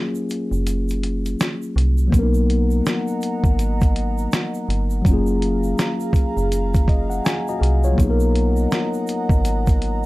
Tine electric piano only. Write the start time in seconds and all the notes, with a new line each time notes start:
Already playing: F#3 A#3 C#4 F4 G#4
2.07 F#3 A#3
2.13 B3 C#4
2.19 D#4 A#4
5.02 F#3 G#3
5.07 A#3 C#4 F4
5.13 G#4
6.89 D#5
7.10 F#5
7.25 G#5
7.49 F#4 D#5 A#5
7.59 G#4 F5
7.84 F4 C#5
7.92 F#3 A#3
7.98 B3 D#4
8.04 G#4
8.10 A#4